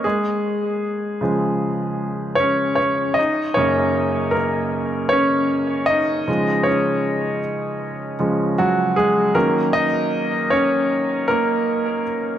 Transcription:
X:1
M:4/4
L:1/8
Q:1/4=78
K:C#mix
V:1 name="Grand piano"
[G,G]6 [Cc] [Cc] | [Dd] [Cc]2 [A,A]2 [Cc]2 [Dd]- | [Dd] [Cc]4 z [F,F] [G,G] | [A,A] [Dd]2 [Cc]2 [A,A]2 z |]
V:2 name="Grand piano" clef=bass
z3 [C,E,G,]3 z2 | z [F,,C,A,]6- [F,,C,A,] | [C,E,G,]3 z2 [C,E,G,] z2 | [D,F,C] z6 z |]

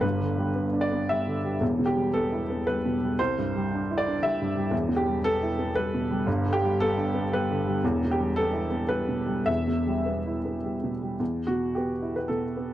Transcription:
X:1
M:3/4
L:1/16
Q:1/4=114
K:Em
V:1 name="Upright piano"
B6 d2 e4 | z2 G2 A4 B4 | c6 d2 e4 | z2 G2 A4 B4 |
z2 G2 A4 B4 | z2 G2 A4 B4 | e8- e2 z2 | z2 F2 G3 B A4 |]
V:2 name="Upright piano" clef=bass
(3[G,,,G,,]2 D,2 G,2 (3B,2 D2 B,2 (3G,2 D,2 G,2 | (3[E,,,E,,]2 B,,2 G,2 (3B,2 E2 B,2 (3G,2 B,,2 G,2 | (3C,,2 G,,2 G,2 (3D2 E2 D2 (3G,2 G,,2 G,2 | (3[E,,,E,,]2 B,,2 G,2 (3B,2 E2 B,2 (3G,2 B,,2 G,2 |
(3[G,,,G,,]2 D,2 G,2 (3B,2 D2 B,2 (3G,2 D,2 G,2 | (3[E,,,E,,]2 B,,2 G,2 (3B,2 E2 B,2 (3G,2 B,,2 G,2 | (3[E,,,E,,]2 B,,2 G,2 (3B,2 E2 B,2 (3G,2 B,,2 G,2 | E,,2 B,,2 B,2 E2 B,,2 B,2 |]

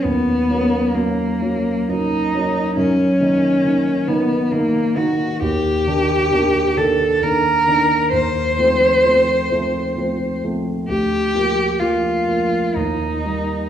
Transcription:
X:1
M:3/4
L:1/8
Q:1/4=66
K:D#m
V:1 name="Cello"
B,2 A,2 D2 | C3 B, A, F | [K:Eblyd] G3 A B2 | c4- c z |
G2 F2 E2 |]
V:2 name="Grand piano"
D,, [F,A,C] [F,A,C] [F,A,C] [F,A,C] [F,A,C] | F,, [D,A,D] [D,A,D] [D,A,D] [D,A,D] [D,A,D] | [K:Eblyd] E,, [E,B,D] [E,B,D] [E,B,D] [E,B,D] [E,B,D] | E,, [F,A,C] [F,A,C] [F,A,C] [F,A,C] [F,A,C] |
D,, [F,B,] [F,B,] [F,B,] E,, [G,B,] |]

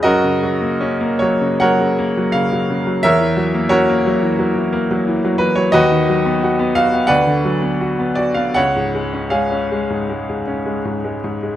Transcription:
X:1
M:4/4
L:1/16
Q:1/4=85
K:F#
V:1 name="Grand piano"
[FAd]6 c2 [Acf]4 e4 | [Ac=e]4 [FAc]8- [FAc]2 B c | [FBd]6 e2 [B=df]6 d e | [cf]4 [Gce]8- [Gce]2 z2 |]
V:2 name="Grand piano" clef=bass
F,, C, F, A, C A, F, C, F, C, A, F, C, F, C, F, | =E,, =E, F, A, C A, F, E, F, E, A, F, E, F, E, F, | D,, D, F, B, F B, F B, =D,, =D, F, B, F B, F B, | C,, G,, G, C G, C G, G,, G, G,, C G, G,, G, G,, G, |]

